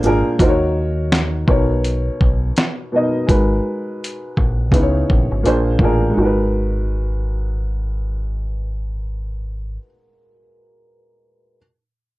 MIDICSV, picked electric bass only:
0, 0, Header, 1, 2, 480
1, 0, Start_track
1, 0, Key_signature, 5, "minor"
1, 0, Tempo, 722892
1, 261, Time_signature, 4, 2, 24, 8
1, 8090, End_track
2, 0, Start_track
2, 0, Title_t, "Picked electric bass"
2, 0, Program_c, 0, 34
2, 25, Note_on_c, 0, 32, 79
2, 143, Note_off_c, 0, 32, 0
2, 263, Note_on_c, 0, 39, 102
2, 955, Note_off_c, 0, 39, 0
2, 982, Note_on_c, 0, 35, 95
2, 1386, Note_off_c, 0, 35, 0
2, 1468, Note_on_c, 0, 35, 81
2, 1667, Note_off_c, 0, 35, 0
2, 2185, Note_on_c, 0, 32, 92
2, 2385, Note_off_c, 0, 32, 0
2, 2905, Note_on_c, 0, 34, 77
2, 3134, Note_off_c, 0, 34, 0
2, 3134, Note_on_c, 0, 37, 91
2, 3339, Note_off_c, 0, 37, 0
2, 3386, Note_on_c, 0, 34, 73
2, 3504, Note_off_c, 0, 34, 0
2, 3527, Note_on_c, 0, 32, 75
2, 3608, Note_off_c, 0, 32, 0
2, 3625, Note_on_c, 0, 34, 84
2, 3825, Note_off_c, 0, 34, 0
2, 3847, Note_on_c, 0, 33, 85
2, 4054, Note_off_c, 0, 33, 0
2, 4102, Note_on_c, 0, 32, 82
2, 6484, Note_off_c, 0, 32, 0
2, 8090, End_track
0, 0, End_of_file